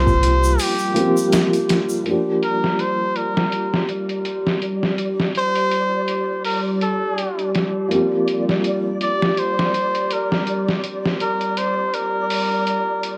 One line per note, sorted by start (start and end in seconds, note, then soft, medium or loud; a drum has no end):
0.00 0.57 C2 medium
0.00 0.94 F3 loud
0.00 2.06 G3 medium
0.00 0.96 A#3 medium
0.00 0.98 C4 medium
0.00 1.00 G4 loud
0.00 2.05 G4 medium
0.00 0.62 C5 loud
0.07 kick medium
0.07 shaker soft
0.23 closed hi-hat medium
0.44 shaker medium
0.59 1.33 G4 medium
0.59 open hi-hat medium
0.59 shaker medium
0.78 shaker soft
0.94 2.01 F3 medium
0.94 2.02 A#3 medium
0.94 2.03 C4 medium
0.94 closed hi-hat medium
1.00 2.04 G4 medium
1.17 shaker medium
1.32 snare loud
1.32 closed hi-hat medium
1.32 shaker medium
1.53 closed hi-hat soft
1.53 shaker soft
1.69 snare medium
1.69 closed hi-hat medium
1.89 shaker medium
2.04 7.86 F3 medium
2.04 13.18 G3 medium
2.04 7.87 A#3 medium
2.04 13.18 G4 medium
2.04 13.18 D5 medium
2.04 closed hi-hat medium
2.08 7.88 D4 medium
2.08 7.89 G4 medium
2.43 2.82 A#4 medium
2.43 closed hi-hat medium
2.64 snare soft
2.79 3.18 C5 medium
2.79 closed hi-hat medium
3.16 3.89 A#4 medium
3.16 closed hi-hat medium
3.37 snare medium
3.52 closed hi-hat medium
3.74 snare soft
3.89 closed hi-hat medium
4.09 closed hi-hat soft
4.25 closed hi-hat medium
4.47 snare soft
4.62 closed hi-hat medium
4.83 snare soft
4.98 closed hi-hat medium
5.20 snare soft
5.35 6.42 C5 loud
5.35 closed hi-hat medium
5.55 closed hi-hat soft
5.71 closed hi-hat medium
6.08 closed hi-hat medium
6.45 6.61 A#4 medium
6.45 open hi-hat medium
6.81 7.51 A4 medium
6.81 closed hi-hat medium
7.18 closed hi-hat medium
7.39 closed hi-hat soft
7.55 snare soft
7.55 closed hi-hat medium
7.88 13.18 F3 medium
7.88 13.18 A#3 medium
7.88 closed hi-hat medium
7.93 13.18 C4 medium
7.93 13.18 G4 medium
8.28 closed hi-hat medium
8.49 snare soft
8.64 closed hi-hat medium
9.01 9.40 D5 medium
9.01 closed hi-hat medium
9.22 snare soft
9.37 10.14 C5 medium
9.37 closed hi-hat medium
9.59 snare soft
9.74 closed hi-hat medium
9.95 closed hi-hat soft
10.11 10.69 A#4 medium
10.11 closed hi-hat medium
10.32 snare soft
10.47 closed hi-hat medium
10.69 snare soft
10.84 closed hi-hat medium
11.06 snare soft
11.20 11.59 A#4 medium
11.20 closed hi-hat medium
11.41 closed hi-hat soft
11.57 11.96 C5 medium
11.57 closed hi-hat medium
11.94 13.18 A#4 medium
11.94 closed hi-hat medium
12.30 open hi-hat medium
12.67 closed hi-hat medium
13.03 closed hi-hat medium